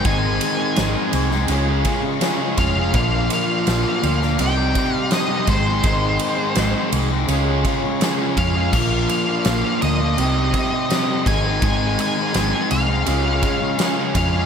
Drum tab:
CC |----------------|----------------|----------------|x---------------|
RD |x-x-x-x-x-x-x-x-|x-x-x-x-x-x-x-x-|x-x-x-x-x-x-x-x-|--x-x-x-x-x-x-x-|
SD |----o--o----o---|----o--o----o---|----o-------o---|----o-------o---|
BD |o---------o---o-|o---------o---o-|o---------o---o-|o---------o---o-|

CC |----------------|
RD |x-x-x-x-x-x-x-x-|
SD |----o-------o---|
BD |o---------o---o-|